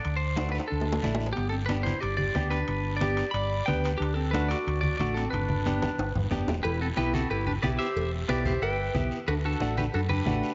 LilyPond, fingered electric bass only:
\new Staff \with { instrumentName = "Fingered electric bass" } { \clef bass \time 4/4 \key g \major \tempo 4 = 182 d,2 d,4 a,,4 | g,,2 g,,4 d,4 | g,,2 g,,4 d,4 | d,2 d,4 a,,4 |
g,,2 g,,8 g,,8 fis,,8 e,,8 | e,,4 b,,4 g,,4 b,,8 r8 | e,,4 b,,4 g,,4 b,,8 r8 | d,4 a,,4 fis,4 a,,8 r8 | }